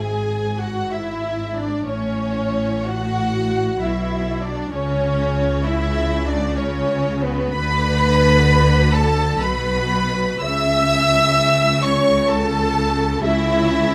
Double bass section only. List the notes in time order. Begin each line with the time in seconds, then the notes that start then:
Already playing: G#1
1.87 A1
3.81 B1
4.72 C#2
7.55 D2
9.41 B1
10.42 C#2
13.24 C#2